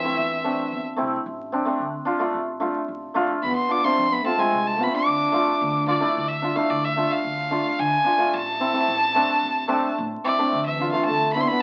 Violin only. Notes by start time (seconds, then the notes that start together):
Already playing: E5
3.43 B5
3.56 C6
3.71 D6
3.84 C6
4.12 B5
4.26 A5
4.40 G#5
4.67 A5
4.83 B5
4.95 D6
5.88 D5
6.28 E5
6.56 F5
6.70 D5
6.84 E5
7.11 F5
7.79 G#5
8.34 A5
10.24 D5
10.66 E5
10.92 F5
11.05 A5
11.33 B5
11.41 C6
11.48 B5